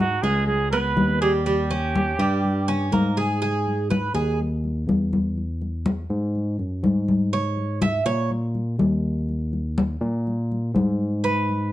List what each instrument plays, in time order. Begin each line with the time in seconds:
Already playing: tine electric piano G#2, cuban tres D#4
0.00 trumpet F#4
0.22 tine electric piano C#2, cuban tres G#3, trumpet G#4, high conga
0.47 trumpet G#4, high conga
0.71 cuban tres B3, trumpet B4, high conga
0.96 tine electric piano D#2, high conga
1.21 cuban tres G3, trumpet G#4
1.45 cuban tres G3, trumpet G4, high conga
1.71 cuban tres C#4, high conga
1.95 high conga
2.18 tine electric piano G2, cuban tres G3, high conga
2.44 high conga
2.68 cuban tres C#4, high conga
2.92 tine electric piano G#2, cuban tres A#3, high conga
3.17 cuban tres G#4
3.42 cuban tres G#4, high conga
3.67 high conga
3.90 cuban tres B4, high conga
4.14 tine electric piano D#2, cuban tres G#4, high conga
4.40 high conga
4.64 high conga
4.87 tine electric piano E2, high conga
5.13 high conga
5.38 high conga
5.61 high conga
5.86 high conga
6.10 tine electric piano G#2, high conga
6.35 high conga
6.58 tine electric piano F#2, high conga
6.83 tine electric piano G#2, high conga
7.08 high conga
7.33 cuban tres C#5, high conga
7.57 high conga
7.81 cuban tres E5, high conga
8.05 tine electric piano A#2, cuban tres C#5, high conga
8.30 high conga
8.55 high conga
8.78 tine electric piano D#2, high conga
9.29 high conga
9.53 high conga
9.78 high conga
10.01 tine electric piano A#2, high conga
10.27 high conga
10.52 high conga
10.74 tine electric piano G#2, high conga
11.24 cuban tres B4, high conga
11.49 high conga